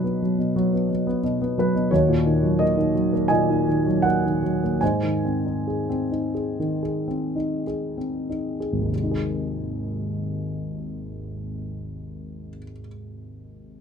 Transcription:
grand piano
Already playing: B2 F#3 B3 D#4 B4
0.04 B3
0.22 F#3
0.39 B2
0.56 F#3
0.73 B3
0.90 F#3
1.07 B3
1.24 B2
1.42 B3
1.58 F#3 B4
1.76 B2
1.91 D#2 F#4 C#5
2.09 A#2
2.26 D#3
2.43 F#3
2.59 A#3 D#5
2.77 D#3
2.95 F#3
3.13 A#3
3.28 A#2 D#5 G#5
3.50 D#4
3.68 D#3
3.86 F#3
4.02 A#3 F#5
4.25 D#3
4.43 F#3
4.63 A#3
4.81 G#2 C5 G#5
5.03 D#3
5.25 C4
5.45 D#4
5.67 G#4
5.89 C4
6.12 D#4
6.35 G#4
6.59 D#3
6.83 G#4
7.08 C4
7.36 D#4
7.67 G#4
7.97 C4
8.30 D#4
8.60 G#4
8.72 G#1
8.80 D#2
8.88 C3
8.96 G#3
9.03 D#4
9.11 G#4

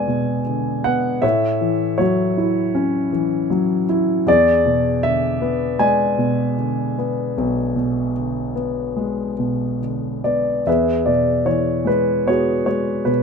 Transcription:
grand piano
Already playing: E2 B2 D3 G#3 B3 G#4 D5 E5 G#5
0.08 B2
0.46 D3
0.84 B3 F#5
1.22 A2 C#5 E5
1.61 E3
1.98 F#3 F#4 C#5
2.38 E4
2.75 C#4
3.12 E3
3.50 F#3
3.89 E4
4.26 E2 G#4 D5
4.66 B2
5.03 D3 E5
5.41 B3
5.79 G#3 D5 G#5
6.18 B2
6.58 D3
6.98 B3
7.38 B1
7.76 B2
8.17 D3
8.55 B3
8.96 G#3
9.39 B2
9.81 D3
10.24 B3 D5
10.66 E2 G#4 B4 E5
11.06 B2 D5
11.45 E3 C#5
11.85 G#3 B4
12.26 B3 F#4 G#4 C#5
12.66 G#3 C#5
13.05 B2 B4

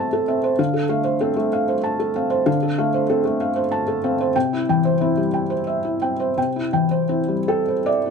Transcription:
felt piano
Already playing: C3 A3 C4 A4 C5 E5 A5
0.13 A4
0.28 C4 E5
0.44 C5
0.59 D3 F5
0.74 A4
0.89 A3 F5
1.04 C5
1.21 C4 A4
1.37 A3
1.53 F5
1.69 C5
1.84 A5
1.99 A4
2.16 C4 F5
2.30 C5
2.46 D3 F5
2.63 A4
2.78 A3 F5
2.94 C5
3.10 C4 A4
3.25 A3
3.41 F5
3.56 C5
3.72 A5
3.88 A4
4.04 C4 F5
4.21 C5
4.36 C3 G5
4.53 E4
4.69 E3 G5
4.85 C5
5.01 C4 E4
5.17 G3
5.34 G5
5.50 C5
5.67 E5
5.85 E4
6.02 C4 G5
6.20 C5
6.38 C3 G5
6.56 E4
6.73 E3 G5
6.91 C5
7.09 C4 E4
7.28 G3
7.48 A4 G5
7.68 C5
7.86 D5 E5
8.06 E4

